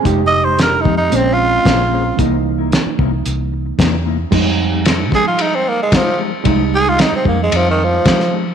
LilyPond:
<<
  \new Staff \with { instrumentName = "Clean electric guitar" } { \time 4/4 \key f \minor \tempo 4 = 112 <f aes ees' g'>16 r8 <aes ees' g'>16 r8 <f aes ees' g'>16 r16 <bes des' aes' c''>16 r8. <bes des' aes' c''>16 r16 <bes des' aes' c''>16 r16 | <c bes dis' e'>16 r8 <bes dis' e'>16 r8 <c bes dis' e'>16 r4 r16 <c bes dis' e'>16 r16 <c bes dis' e'>16 r16 | <f aes ees' g'>16 r8 <aes ees' g'>16 r8 <f aes ees' g'>16 r4 r16 <f aes ees' g'>16 r16 <f aes ees' g'>16 r16 | <f aes ees' g'>16 r8 <aes ees' g'>16 r8 <f aes ees' g'>16 r4 r16 <f aes ees' g'>16 r16 <f aes ees' g'>16 r16 | }
  \new Staff \with { instrumentName = "Tenor saxophone" } { \time 4/4 \key f \minor \tuplet 3/2 { r8 ees''8 c''8 bes'8 ees'8 ees'8 c'8 f'4~ } f'4 | r1 | r4. aes'16 f'16 ees'16 c'16 bes16 aes16 f8 r8 | r8 aes'16 f'16 ees'16 c'16 bes16 aes16 f16 ees16 f4 r8 | }
  \new Staff \with { instrumentName = "Reed electric piano" } { \time 4/4 \key f \minor <aes ees' g'>2 <aes c' des'>2 | <e bes dis'>1 | <g aes ees'>1 | <g aes ees'>1 | }
  \new Staff \with { instrumentName = "Fingered electric bass" } { \clef bass \time 4/4 \key f \minor f,,4. f,8 bes,,4 bes,,4 | c,4~ c,16 r16 c,8 c,4 e,4 | f,4. f4. f,4 | c,4~ c,16 r16 f,8 f,4 f4 | }
  \new DrumStaff \with { instrumentName = "Drums" } \drummode { \time 4/4 <hh bd>4 <hh sn>8 bd8 hh4 <hh bd sn>4 | <hh bd>4 <hh sn>8 bd8 hh4 <hh bd sn>4 | <cymc bd>4 <rb sn>8 <bd sn>8 rb4 <bd rb sn>4 | <bd rb>4 <rb sn>8 bd8 rb4 <bd rb sn>16 sn8. | }
>>